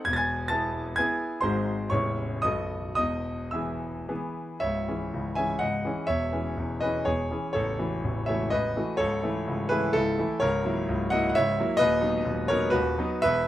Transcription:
0.05 E1 E2 G#6
0.13 G#6 A6
0.18 G#5
0.48 B3 E4 G#4 A5 A6
0.96 B3 E4 G#4 G#5 G#6
1.41 G#1 G#2 G#3 D#4 C5 C6
1.45 F#4
1.90 A0 A1 G#3 C#4 E4 C#5 C#6
2.42 B0 B1 F#3 B3 D#5 D#6
2.46 A4
2.95 E1 E2 D#5 D#6
3.51 E3 B3 G#4 E5 E6
4.09 E3 B3 G#4
4.60 C#1 C#2 C#5 E5
4.88 E3 C#4 G#4
5.14 C#1 C#2
5.35 E3 C#4 G#4 E5 G#5
5.59 C#1 C#2 D#5 F#5
5.85 E3 C#4 G#4
6.07 E1 E2 C#5 E5
6.33 E3 C#4 G#4
6.57 E1 E2
6.81 E3 C#4 G#4 B4 D#5
7.05 E1 E2 G#4 C#5
7.31 E3 C#4 G#4
7.53 A0 A1 A4 C#5
7.79 E3 A3 F#4
8.03 A0 A1
8.26 E3 A3 F#4 C#5 E5
8.50 A0 A1 B4 D#5
8.76 E3 A3 F#4
8.97 C#1 C#2 A4 C#5
9.23 E3 A3 E4
9.48 C#1 C#2
9.69 E3 A3 E4 G#4 B4
9.93 C#1 C#2 E4 A4
10.19 E3 A3 E4
10.40 C#1 C#2 A#4 C#5
10.64 F#3 A#3 E4
10.88 C#1 C#2
11.10 F#3 A#3 E4 D#5 F#5
11.29 F#5
11.35 C#1 C#2 C#5 E5
11.60 F#3 A#3 E4
11.77 D#1 D#2 B4 D#5
12.01 F#3 B3 D#4
12.25 D#1 D#2
12.48 F#3 B3 D#4 A#4 C#5
12.70 D#1 D#2 F#4 B4
12.98 F#3 B3 D#4
13.22 E1 E2 B4 E5

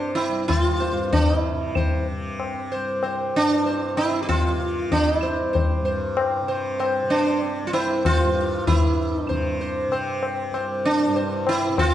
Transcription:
Already playing: C2 G2 C3 D4 C5
0.15 E4, tabla na
0.30 C2
0.48 E4, tabla na, tabla ge
0.60 F4
0.80 C5, tabla te
0.92 G2
1.12 D4, tabla tin, tabla ge
1.27 D#4
1.40 E4
1.52 C3
1.75 C5, tabla tin, tabla ge
2.12 C3
2.40 tabla na
2.72 C2 C5
3.03 C5, tabla na
3.36 G2 D4
3.66 C5, tabla tin
3.97 C3 E4, tabla na
4.23 G4
4.29 F4, tabla na, tabla ge
4.59 C3, tabla te
4.92 D4, tabla tin, tabla ge
5.07 D#4
5.18 C2 E4
5.23 C5
5.53 C5, tabla tin, tabla ge
5.81 G2
5.85 C5
6.17 tabla na
6.42 C3
6.48 C5
6.79 C5, tabla na
7.03 C3
7.10 D4 C5
7.42 tabla tin
7.63 C2
7.67 F4
7.73 E4 C5, tabla na
8.05 F4 C5, tabla na, tabla ge
8.24 G2
8.67 G2 E4, tabla tin, tabla ge
9.14 D#4
9.26 C3 D4 C5, tabla tin, tabla ge
9.61 C5
9.88 C3, tabla na
9.92 C5
10.23 tabla na
10.50 C2
10.54 C5, tabla na
10.85 D4
11.08 G2
11.16 C5, tabla tin
11.47 E4, tabla na
11.68 C3
11.78 F4, tabla na, tabla ge

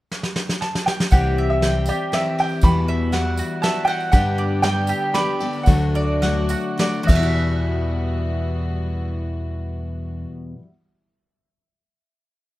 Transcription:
0.11 snare
0.23 snare
0.36 snare
0.49 snare
0.61 A5, snare
0.75 snare
0.86 G5, snare
1.00 snare
1.11 C2 C3 E3 G3 C4 G4 F#5, kick, ride, tambourine
1.38 E5
1.50 E5
1.62 E3 G3 C4 G4 G5, snare, ride
1.86 G3 C4 G4 D5, tambourine
2.12 E3 G3 C4 G4 E5, snare, ride
2.38 G5, ride
2.49 tambourine
2.61 E2 B2 E3 G3 B3 F#4 B5, kick, ride, tambourine
2.88 E5
3.12 E3 G3 B3 F#4 F#5, snare, ride
3.37 F#4, tambourine
3.62 E3 G3 B3 F#4 E5 A5, snare, ride
3.85 F#5 G5, ride
4.00 tambourine
4.12 G2 D3 G3 B3 D4 G4 F#5, kick, ride, tambourine
4.38 D5
4.62 G3 B3 D4 G4 G5, snare, ride
4.87 G4, tambourine
5.14 G3 B3 D4 G4 D5 B5, snare, ride
5.40 G3 B3 D4 G4, ride
5.53 tambourine
5.63 D2 F#3 A3 F#4 F#5, tambourine
5.67 D3 F#3 A3 D4 F#4, kick, ride
5.79 tambourine
5.95 D5
6.22 F#3 A3 D4 F#4 F#5, snare, ride
6.49 F#4, tambourine
6.78 F#3 A3 D4 F#4 D5, snare, ride, tambourine
6.94 tambourine
7.03 E2 F#4 E5
7.07 E2 B2 E3 G3 B3 F#4, kick, crash, tambourine
7.12 E3 E5
7.16 G3 E4
7.23 F#4

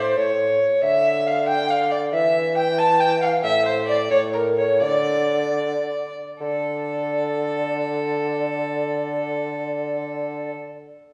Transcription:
Already playing: A2 C5
0.17 A2 C#5
0.82 D3 E5
1.27 F5
1.48 G5
1.69 F5
1.91 D5
2.13 E3 E5
2.56 G5
2.78 A5
2.99 G5
3.21 F5 F#5
3.26 F5
3.43 A2 E5
3.65 C5
3.88 D5
4.11 A2 C#5
4.33 A#4
4.57 C#5
4.82 D3 D5
6.41 D3 A4 D5

